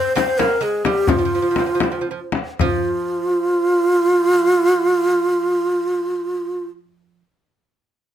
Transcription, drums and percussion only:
0, 0, Header, 1, 3, 480
1, 0, Start_track
1, 0, Tempo, 454545
1, 1142, Time_signature, 6, 3, 24, 8
1, 1142, Tempo, 492207
1, 2102, Tempo, 547445
1, 7433, End_track
2, 0, Start_track
2, 0, Title_t, "Frame drum"
2, 180, Note_on_c, 9, 64, 74
2, 285, Note_off_c, 9, 64, 0
2, 420, Note_on_c, 9, 64, 73
2, 525, Note_off_c, 9, 64, 0
2, 897, Note_on_c, 9, 64, 76
2, 1003, Note_off_c, 9, 64, 0
2, 1147, Note_on_c, 9, 64, 87
2, 1244, Note_off_c, 9, 64, 0
2, 1608, Note_on_c, 9, 64, 69
2, 1706, Note_off_c, 9, 64, 0
2, 1847, Note_on_c, 9, 64, 76
2, 1944, Note_off_c, 9, 64, 0
2, 2327, Note_on_c, 9, 64, 68
2, 2415, Note_off_c, 9, 64, 0
2, 2564, Note_on_c, 9, 64, 78
2, 2652, Note_off_c, 9, 64, 0
2, 7433, End_track
3, 0, Start_track
3, 0, Title_t, "Tombak"
3, 173, Note_on_c, 9, 63, 77
3, 279, Note_off_c, 9, 63, 0
3, 415, Note_on_c, 9, 63, 80
3, 521, Note_off_c, 9, 63, 0
3, 896, Note_on_c, 9, 63, 70
3, 1001, Note_off_c, 9, 63, 0
3, 1134, Note_on_c, 9, 64, 91
3, 1232, Note_off_c, 9, 64, 0
3, 1610, Note_on_c, 9, 63, 67
3, 1707, Note_off_c, 9, 63, 0
3, 1856, Note_on_c, 9, 63, 76
3, 1954, Note_off_c, 9, 63, 0
3, 2102, Note_on_c, 9, 62, 27
3, 2190, Note_off_c, 9, 62, 0
3, 2331, Note_on_c, 9, 63, 67
3, 2419, Note_off_c, 9, 63, 0
3, 2568, Note_on_c, 9, 64, 71
3, 2656, Note_off_c, 9, 64, 0
3, 7433, End_track
0, 0, End_of_file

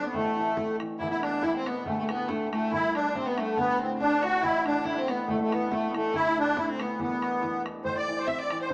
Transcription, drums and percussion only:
0, 0, Header, 1, 2, 480
1, 0, Start_track
1, 0, Tempo, 428266
1, 155, Time_signature, 2, 2, 24, 8
1, 9791, End_track
2, 0, Start_track
2, 0, Title_t, "Bodhran"
2, 157, Note_on_c, 9, 64, 77
2, 270, Note_off_c, 9, 64, 0
2, 638, Note_on_c, 9, 64, 97
2, 750, Note_off_c, 9, 64, 0
2, 896, Note_on_c, 9, 64, 60
2, 1008, Note_off_c, 9, 64, 0
2, 1124, Note_on_c, 9, 64, 78
2, 1236, Note_off_c, 9, 64, 0
2, 1379, Note_on_c, 9, 64, 65
2, 1492, Note_off_c, 9, 64, 0
2, 1598, Note_on_c, 9, 64, 90
2, 1710, Note_off_c, 9, 64, 0
2, 1864, Note_on_c, 9, 64, 69
2, 1977, Note_off_c, 9, 64, 0
2, 2082, Note_on_c, 9, 64, 102
2, 2194, Note_off_c, 9, 64, 0
2, 2340, Note_on_c, 9, 64, 70
2, 2452, Note_off_c, 9, 64, 0
2, 2563, Note_on_c, 9, 64, 95
2, 2675, Note_off_c, 9, 64, 0
2, 2833, Note_on_c, 9, 64, 65
2, 2945, Note_off_c, 9, 64, 0
2, 3053, Note_on_c, 9, 64, 90
2, 3165, Note_off_c, 9, 64, 0
2, 3307, Note_on_c, 9, 64, 59
2, 3420, Note_off_c, 9, 64, 0
2, 3532, Note_on_c, 9, 64, 85
2, 3645, Note_off_c, 9, 64, 0
2, 3784, Note_on_c, 9, 64, 66
2, 3896, Note_off_c, 9, 64, 0
2, 4005, Note_on_c, 9, 64, 82
2, 4117, Note_off_c, 9, 64, 0
2, 4487, Note_on_c, 9, 64, 79
2, 4599, Note_off_c, 9, 64, 0
2, 4740, Note_on_c, 9, 64, 62
2, 4852, Note_off_c, 9, 64, 0
2, 4964, Note_on_c, 9, 64, 67
2, 5076, Note_off_c, 9, 64, 0
2, 5219, Note_on_c, 9, 64, 63
2, 5331, Note_off_c, 9, 64, 0
2, 5437, Note_on_c, 9, 64, 83
2, 5549, Note_off_c, 9, 64, 0
2, 5696, Note_on_c, 9, 64, 60
2, 5808, Note_off_c, 9, 64, 0
2, 5922, Note_on_c, 9, 64, 82
2, 6034, Note_off_c, 9, 64, 0
2, 6191, Note_on_c, 9, 64, 63
2, 6303, Note_off_c, 9, 64, 0
2, 6405, Note_on_c, 9, 64, 90
2, 6517, Note_off_c, 9, 64, 0
2, 6663, Note_on_c, 9, 64, 66
2, 6775, Note_off_c, 9, 64, 0
2, 6882, Note_on_c, 9, 64, 79
2, 6994, Note_off_c, 9, 64, 0
2, 7362, Note_on_c, 9, 64, 97
2, 7474, Note_off_c, 9, 64, 0
2, 7616, Note_on_c, 9, 64, 70
2, 7728, Note_off_c, 9, 64, 0
2, 7842, Note_on_c, 9, 64, 75
2, 7954, Note_off_c, 9, 64, 0
2, 8096, Note_on_c, 9, 64, 60
2, 8208, Note_off_c, 9, 64, 0
2, 8325, Note_on_c, 9, 64, 85
2, 8437, Note_off_c, 9, 64, 0
2, 8582, Note_on_c, 9, 64, 71
2, 8694, Note_off_c, 9, 64, 0
2, 8799, Note_on_c, 9, 64, 83
2, 8911, Note_off_c, 9, 64, 0
2, 9277, Note_on_c, 9, 64, 92
2, 9389, Note_off_c, 9, 64, 0
2, 9532, Note_on_c, 9, 64, 80
2, 9644, Note_off_c, 9, 64, 0
2, 9791, End_track
0, 0, End_of_file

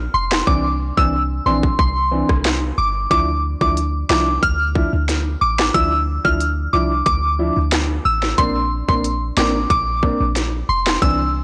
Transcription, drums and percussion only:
0, 0, Header, 1, 2, 480
1, 0, Start_track
1, 0, Key_signature, -1, "minor"
1, 0, Tempo, 659341
1, 342, Time_signature, 4, 2, 24, 8
1, 8326, End_track
2, 0, Start_track
2, 0, Title_t, "Drums"
2, 230, Note_on_c, 9, 38, 107
2, 238, Note_on_c, 9, 39, 86
2, 303, Note_off_c, 9, 38, 0
2, 311, Note_off_c, 9, 39, 0
2, 343, Note_on_c, 9, 36, 117
2, 416, Note_off_c, 9, 36, 0
2, 710, Note_on_c, 9, 36, 92
2, 783, Note_off_c, 9, 36, 0
2, 1189, Note_on_c, 9, 36, 92
2, 1262, Note_off_c, 9, 36, 0
2, 1302, Note_on_c, 9, 36, 96
2, 1375, Note_off_c, 9, 36, 0
2, 1669, Note_on_c, 9, 36, 86
2, 1670, Note_on_c, 9, 37, 93
2, 1742, Note_off_c, 9, 36, 0
2, 1742, Note_off_c, 9, 37, 0
2, 1784, Note_on_c, 9, 38, 115
2, 1792, Note_on_c, 9, 39, 96
2, 1857, Note_off_c, 9, 38, 0
2, 1865, Note_off_c, 9, 39, 0
2, 2263, Note_on_c, 9, 36, 122
2, 2263, Note_on_c, 9, 42, 70
2, 2336, Note_off_c, 9, 36, 0
2, 2336, Note_off_c, 9, 42, 0
2, 2629, Note_on_c, 9, 36, 92
2, 2702, Note_off_c, 9, 36, 0
2, 2745, Note_on_c, 9, 42, 75
2, 2818, Note_off_c, 9, 42, 0
2, 2985, Note_on_c, 9, 38, 118
2, 2993, Note_on_c, 9, 39, 90
2, 3058, Note_off_c, 9, 38, 0
2, 3066, Note_off_c, 9, 39, 0
2, 3222, Note_on_c, 9, 36, 93
2, 3223, Note_on_c, 9, 42, 70
2, 3295, Note_off_c, 9, 36, 0
2, 3296, Note_off_c, 9, 42, 0
2, 3461, Note_on_c, 9, 36, 88
2, 3534, Note_off_c, 9, 36, 0
2, 3704, Note_on_c, 9, 38, 68
2, 3706, Note_on_c, 9, 42, 73
2, 3777, Note_off_c, 9, 38, 0
2, 3779, Note_off_c, 9, 42, 0
2, 4070, Note_on_c, 9, 38, 110
2, 4078, Note_on_c, 9, 39, 87
2, 4143, Note_off_c, 9, 38, 0
2, 4151, Note_off_c, 9, 39, 0
2, 4182, Note_on_c, 9, 36, 120
2, 4182, Note_on_c, 9, 42, 70
2, 4255, Note_off_c, 9, 36, 0
2, 4255, Note_off_c, 9, 42, 0
2, 4549, Note_on_c, 9, 36, 89
2, 4621, Note_off_c, 9, 36, 0
2, 4662, Note_on_c, 9, 42, 76
2, 4735, Note_off_c, 9, 42, 0
2, 5140, Note_on_c, 9, 42, 70
2, 5141, Note_on_c, 9, 36, 98
2, 5212, Note_off_c, 9, 42, 0
2, 5214, Note_off_c, 9, 36, 0
2, 5620, Note_on_c, 9, 38, 114
2, 5623, Note_on_c, 9, 42, 69
2, 5628, Note_on_c, 9, 39, 93
2, 5693, Note_off_c, 9, 38, 0
2, 5696, Note_off_c, 9, 42, 0
2, 5701, Note_off_c, 9, 39, 0
2, 5989, Note_on_c, 9, 38, 64
2, 6061, Note_off_c, 9, 38, 0
2, 6101, Note_on_c, 9, 42, 68
2, 6102, Note_on_c, 9, 36, 123
2, 6173, Note_off_c, 9, 42, 0
2, 6174, Note_off_c, 9, 36, 0
2, 6469, Note_on_c, 9, 36, 92
2, 6541, Note_off_c, 9, 36, 0
2, 6584, Note_on_c, 9, 42, 72
2, 6656, Note_off_c, 9, 42, 0
2, 6824, Note_on_c, 9, 38, 122
2, 6832, Note_on_c, 9, 39, 95
2, 6897, Note_off_c, 9, 38, 0
2, 6905, Note_off_c, 9, 39, 0
2, 7062, Note_on_c, 9, 36, 98
2, 7063, Note_on_c, 9, 42, 71
2, 7135, Note_off_c, 9, 36, 0
2, 7136, Note_off_c, 9, 42, 0
2, 7300, Note_on_c, 9, 36, 84
2, 7373, Note_off_c, 9, 36, 0
2, 7542, Note_on_c, 9, 38, 68
2, 7544, Note_on_c, 9, 42, 72
2, 7615, Note_off_c, 9, 38, 0
2, 7617, Note_off_c, 9, 42, 0
2, 7910, Note_on_c, 9, 38, 107
2, 7918, Note_on_c, 9, 39, 85
2, 7983, Note_off_c, 9, 38, 0
2, 7991, Note_off_c, 9, 39, 0
2, 8022, Note_on_c, 9, 36, 119
2, 8023, Note_on_c, 9, 42, 68
2, 8095, Note_off_c, 9, 36, 0
2, 8095, Note_off_c, 9, 42, 0
2, 8326, End_track
0, 0, End_of_file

